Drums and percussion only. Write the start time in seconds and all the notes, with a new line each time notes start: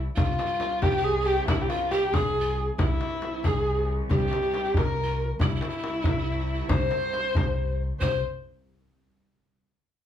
0.17 frame drum, tombak dum
0.39 tombak tek, frame drum
0.60 tombak tek, frame drum
0.82 frame drum, tombak dum
1.05 tombak ka
1.48 tombak dum, frame drum
1.70 tombak tek, frame drum
1.91 tombak tek, frame drum
2.14 frame drum, tombak dum
2.36 tombak ka
2.79 frame drum, tombak dum
3.01 tombak tek, frame drum
3.22 tombak tek, frame drum
3.44 frame drum, tombak dum
3.67 tombak ka
4.10 tombak dum, frame drum
4.32 tombak tek, frame drum
4.54 tombak tek, frame drum
4.74 tombak dum, frame drum
4.97 tombak ka
5.40 tombak dum, frame drum
5.61 tombak tek, frame drum
5.84 tombak tek, frame drum
6.04 tombak dum, frame drum
6.26 tombak ka
6.69 frame drum, tombak dum
6.91 tombak tek, frame drum
7.13 tombak tek, frame drum
7.35 tombak dum, frame drum
7.57 tombak ka
8.01 tombak dum, frame drum